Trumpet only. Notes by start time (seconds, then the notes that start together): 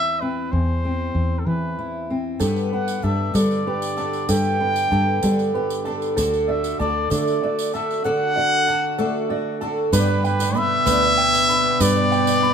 Already playing: E5
0.21 B4
0.51 C5
1.39 A4
1.46 B4
2.71 F#5
3.03 E5
3.35 D5
4.29 G5
6.48 E5
6.80 D5
7.11 D5
7.74 E5
8.05 F#5
9.94 B4
10.26 B4
10.57 E5
11.81 D5